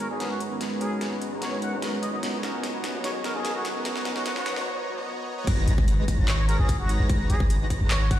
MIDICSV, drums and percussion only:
0, 0, Header, 1, 2, 480
1, 0, Start_track
1, 0, Tempo, 405405
1, 721, Time_signature, 4, 2, 24, 8
1, 9703, End_track
2, 0, Start_track
2, 0, Title_t, "Drums"
2, 0, Note_on_c, 9, 42, 63
2, 119, Note_off_c, 9, 42, 0
2, 240, Note_on_c, 9, 38, 53
2, 240, Note_on_c, 9, 42, 78
2, 358, Note_off_c, 9, 38, 0
2, 358, Note_off_c, 9, 42, 0
2, 479, Note_on_c, 9, 42, 68
2, 598, Note_off_c, 9, 42, 0
2, 719, Note_on_c, 9, 38, 55
2, 719, Note_on_c, 9, 42, 77
2, 837, Note_off_c, 9, 38, 0
2, 837, Note_off_c, 9, 42, 0
2, 959, Note_on_c, 9, 42, 64
2, 1077, Note_off_c, 9, 42, 0
2, 1198, Note_on_c, 9, 38, 57
2, 1198, Note_on_c, 9, 42, 78
2, 1316, Note_off_c, 9, 38, 0
2, 1316, Note_off_c, 9, 42, 0
2, 1439, Note_on_c, 9, 42, 68
2, 1557, Note_off_c, 9, 42, 0
2, 1678, Note_on_c, 9, 38, 62
2, 1678, Note_on_c, 9, 42, 83
2, 1797, Note_off_c, 9, 38, 0
2, 1797, Note_off_c, 9, 42, 0
2, 1919, Note_on_c, 9, 42, 66
2, 2037, Note_off_c, 9, 42, 0
2, 2160, Note_on_c, 9, 38, 68
2, 2160, Note_on_c, 9, 42, 75
2, 2278, Note_off_c, 9, 38, 0
2, 2278, Note_off_c, 9, 42, 0
2, 2400, Note_on_c, 9, 42, 70
2, 2518, Note_off_c, 9, 42, 0
2, 2640, Note_on_c, 9, 38, 72
2, 2640, Note_on_c, 9, 42, 78
2, 2759, Note_off_c, 9, 38, 0
2, 2759, Note_off_c, 9, 42, 0
2, 2881, Note_on_c, 9, 38, 73
2, 2881, Note_on_c, 9, 42, 68
2, 2999, Note_off_c, 9, 38, 0
2, 2999, Note_off_c, 9, 42, 0
2, 3120, Note_on_c, 9, 38, 73
2, 3120, Note_on_c, 9, 42, 77
2, 3238, Note_off_c, 9, 38, 0
2, 3238, Note_off_c, 9, 42, 0
2, 3360, Note_on_c, 9, 38, 84
2, 3360, Note_on_c, 9, 42, 71
2, 3479, Note_off_c, 9, 38, 0
2, 3479, Note_off_c, 9, 42, 0
2, 3600, Note_on_c, 9, 38, 79
2, 3600, Note_on_c, 9, 42, 83
2, 3719, Note_off_c, 9, 38, 0
2, 3719, Note_off_c, 9, 42, 0
2, 3840, Note_on_c, 9, 38, 82
2, 3840, Note_on_c, 9, 42, 66
2, 3959, Note_off_c, 9, 38, 0
2, 3959, Note_off_c, 9, 42, 0
2, 4080, Note_on_c, 9, 38, 82
2, 4080, Note_on_c, 9, 42, 78
2, 4199, Note_off_c, 9, 38, 0
2, 4199, Note_off_c, 9, 42, 0
2, 4321, Note_on_c, 9, 38, 92
2, 4321, Note_on_c, 9, 42, 69
2, 4439, Note_off_c, 9, 38, 0
2, 4439, Note_off_c, 9, 42, 0
2, 4560, Note_on_c, 9, 38, 92
2, 4560, Note_on_c, 9, 42, 73
2, 4678, Note_off_c, 9, 38, 0
2, 4678, Note_off_c, 9, 42, 0
2, 4684, Note_on_c, 9, 38, 80
2, 4800, Note_off_c, 9, 38, 0
2, 4800, Note_on_c, 9, 38, 95
2, 4800, Note_on_c, 9, 42, 60
2, 4918, Note_off_c, 9, 38, 0
2, 4918, Note_off_c, 9, 42, 0
2, 4923, Note_on_c, 9, 38, 85
2, 5040, Note_off_c, 9, 38, 0
2, 5040, Note_on_c, 9, 38, 89
2, 5040, Note_on_c, 9, 42, 76
2, 5159, Note_off_c, 9, 38, 0
2, 5159, Note_off_c, 9, 42, 0
2, 5163, Note_on_c, 9, 38, 85
2, 5280, Note_off_c, 9, 38, 0
2, 5280, Note_on_c, 9, 38, 103
2, 5280, Note_on_c, 9, 42, 70
2, 5399, Note_off_c, 9, 38, 0
2, 5399, Note_off_c, 9, 42, 0
2, 5404, Note_on_c, 9, 38, 90
2, 5522, Note_off_c, 9, 38, 0
2, 6480, Note_on_c, 9, 42, 80
2, 6480, Note_on_c, 9, 49, 103
2, 6481, Note_on_c, 9, 36, 123
2, 6598, Note_off_c, 9, 42, 0
2, 6598, Note_off_c, 9, 49, 0
2, 6600, Note_off_c, 9, 36, 0
2, 6720, Note_on_c, 9, 42, 68
2, 6838, Note_off_c, 9, 42, 0
2, 6845, Note_on_c, 9, 36, 109
2, 6960, Note_on_c, 9, 42, 83
2, 6963, Note_off_c, 9, 36, 0
2, 7078, Note_off_c, 9, 42, 0
2, 7200, Note_on_c, 9, 42, 75
2, 7201, Note_on_c, 9, 36, 62
2, 7318, Note_off_c, 9, 42, 0
2, 7319, Note_off_c, 9, 36, 0
2, 7439, Note_on_c, 9, 39, 117
2, 7439, Note_on_c, 9, 42, 81
2, 7558, Note_off_c, 9, 39, 0
2, 7558, Note_off_c, 9, 42, 0
2, 7680, Note_on_c, 9, 42, 71
2, 7798, Note_off_c, 9, 42, 0
2, 7920, Note_on_c, 9, 42, 83
2, 7921, Note_on_c, 9, 36, 102
2, 8038, Note_off_c, 9, 42, 0
2, 8039, Note_off_c, 9, 36, 0
2, 8160, Note_on_c, 9, 42, 73
2, 8278, Note_off_c, 9, 42, 0
2, 8400, Note_on_c, 9, 42, 82
2, 8401, Note_on_c, 9, 36, 124
2, 8518, Note_off_c, 9, 42, 0
2, 8520, Note_off_c, 9, 36, 0
2, 8640, Note_on_c, 9, 42, 68
2, 8758, Note_off_c, 9, 42, 0
2, 8765, Note_on_c, 9, 36, 110
2, 8881, Note_on_c, 9, 42, 83
2, 8883, Note_off_c, 9, 36, 0
2, 8999, Note_off_c, 9, 42, 0
2, 9121, Note_on_c, 9, 36, 67
2, 9121, Note_on_c, 9, 42, 77
2, 9239, Note_off_c, 9, 36, 0
2, 9239, Note_off_c, 9, 42, 0
2, 9361, Note_on_c, 9, 39, 121
2, 9361, Note_on_c, 9, 42, 87
2, 9479, Note_off_c, 9, 39, 0
2, 9479, Note_off_c, 9, 42, 0
2, 9600, Note_on_c, 9, 42, 68
2, 9601, Note_on_c, 9, 36, 111
2, 9703, Note_off_c, 9, 36, 0
2, 9703, Note_off_c, 9, 42, 0
2, 9703, End_track
0, 0, End_of_file